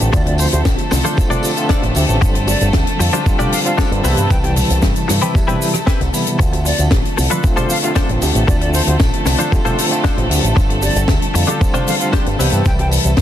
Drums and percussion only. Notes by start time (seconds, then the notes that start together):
0.00 closed hi-hat, tambourine, shaker
0.12 kick, closed hi-hat, tambourine, high bongo, shaker
0.26 closed hi-hat, tambourine
0.38 open hi-hat, tambourine, shaker
0.52 closed hi-hat, tambourine, high bongo, shaker
0.65 kick, snare, closed hi-hat, tambourine, shaker
0.77 closed hi-hat, tambourine, high bongo
0.91 snare, open hi-hat, tambourine, shaker
1.04 closed hi-hat, tambourine, high conga, shaker
1.17 kick, closed hi-hat, tambourine, high bongo, shaker
1.30 closed hi-hat, tambourine, low conga, shaker
1.42 open hi-hat, tambourine, high bongo, shaker
1.56 closed hi-hat, tambourine, shaker
1.69 kick, snare, closed hi-hat, tambourine, shaker
1.82 closed hi-hat, tambourine, high bongo
1.95 open hi-hat, tambourine, shaker
2.08 closed hi-hat, tambourine, high bongo, high conga, shaker
2.22 kick, closed hi-hat, tambourine, shaker
2.35 closed hi-hat, tambourine
2.47 open hi-hat, tambourine, high bongo, shaker
2.60 closed hi-hat, tambourine, shaker
2.73 kick, snare, closed hi-hat, tambourine, high bongo, shaker
2.87 closed hi-hat, tambourine
3.00 open hi-hat, tambourine, shaker
3.13 closed hi-hat, tambourine, high bongo, high conga, shaker
3.26 kick, closed hi-hat, tambourine, shaker
3.39 closed hi-hat, tambourine, high bongo, low conga, shaker
3.52 open hi-hat, tambourine, high conga, shaker
3.65 closed hi-hat, tambourine, shaker
3.78 kick, snare, closed hi-hat, tambourine, high bongo, shaker
3.92 closed hi-hat, tambourine
4.04 open hi-hat, tambourine, high bongo, shaker
4.17 closed hi-hat, tambourine, shaker
4.30 kick, closed hi-hat, tambourine, shaker
4.44 closed hi-hat, tambourine, high bongo
4.56 open hi-hat, tambourine, low conga, shaker
4.69 closed hi-hat, tambourine, high bongo, shaker
4.82 kick, snare, closed hi-hat, tambourine, shaker
4.96 closed hi-hat, tambourine, shaker
5.09 cross-stick, snare, open hi-hat, tambourine, high bongo, shaker
5.22 closed hi-hat, tambourine, high conga, shaker
5.35 kick, closed hi-hat, tambourine, high bongo, shaker
5.48 closed hi-hat, tambourine, low conga, shaker
5.62 open hi-hat, tambourine, shaker
5.74 cross-stick, closed hi-hat, tambourine, high bongo, high conga, shaker
5.87 kick, snare, closed hi-hat, tambourine, shaker
6.01 closed hi-hat, tambourine, high bongo
6.14 open hi-hat, tambourine, shaker
6.26 closed hi-hat, tambourine, high conga, shaker
6.39 kick, closed hi-hat, tambourine, shaker
6.53 closed hi-hat, tambourine, high bongo
6.66 open hi-hat, tambourine, shaker
6.78 closed hi-hat, tambourine, shaker
6.91 kick, snare, closed hi-hat, tambourine, high bongo, shaker
7.05 closed hi-hat, tambourine
7.18 open hi-hat, tambourine, high bongo, shaker
7.31 closed hi-hat, tambourine, high conga, shaker
7.44 kick, closed hi-hat, tambourine, shaker
7.57 closed hi-hat, tambourine, high bongo, low conga, shaker
7.70 open hi-hat, tambourine, high conga, shaker
7.83 closed hi-hat, tambourine, high bongo, shaker
7.96 kick, snare, closed hi-hat, tambourine, shaker
8.09 closed hi-hat, tambourine
8.22 open hi-hat, tambourine, high bongo, shaker
8.35 closed hi-hat, tambourine, shaker
8.48 kick, closed hi-hat, tambourine, high bongo, shaker
8.61 closed hi-hat, tambourine
8.74 open hi-hat, tambourine, shaker
8.87 closed hi-hat, tambourine, high bongo, shaker
9.00 kick, snare, closed hi-hat, tambourine, shaker
9.13 closed hi-hat, tambourine, high bongo
9.26 snare, open hi-hat, tambourine, shaker
9.39 closed hi-hat, tambourine, high conga, shaker
9.52 kick, closed hi-hat, tambourine, high bongo, shaker
9.66 closed hi-hat, tambourine, low conga, shaker
9.78 open hi-hat, tambourine, high bongo, shaker
9.92 closed hi-hat, tambourine, shaker
10.04 kick, snare, closed hi-hat, tambourine, shaker
10.18 closed hi-hat, tambourine, high bongo
10.31 open hi-hat, tambourine, shaker
10.43 closed hi-hat, tambourine, high bongo, high conga, shaker
10.57 kick, closed hi-hat, tambourine, shaker
10.70 closed hi-hat, tambourine
10.82 open hi-hat, tambourine, high bongo, shaker
10.96 closed hi-hat, tambourine, shaker
11.08 kick, snare, closed hi-hat, tambourine, high bongo, shaker
11.22 closed hi-hat, tambourine
11.35 open hi-hat, tambourine, shaker
11.48 closed hi-hat, tambourine, high bongo, high conga, shaker
11.61 kick, closed hi-hat, tambourine, shaker
11.74 closed hi-hat, tambourine, high bongo, low conga, shaker
11.88 open hi-hat, tambourine, high conga, shaker
12.00 closed hi-hat, tambourine, shaker
12.13 kick, snare, closed hi-hat, tambourine, high bongo, shaker
12.26 closed hi-hat, tambourine
12.40 open hi-hat, tambourine, high bongo, shaker
12.52 closed hi-hat, tambourine, shaker
12.65 kick, closed hi-hat, tambourine, shaker
12.79 closed hi-hat, tambourine, high bongo
12.91 open hi-hat, tambourine, shaker
13.04 closed hi-hat, tambourine, high bongo, shaker
13.17 kick, snare, closed hi-hat, tambourine, shaker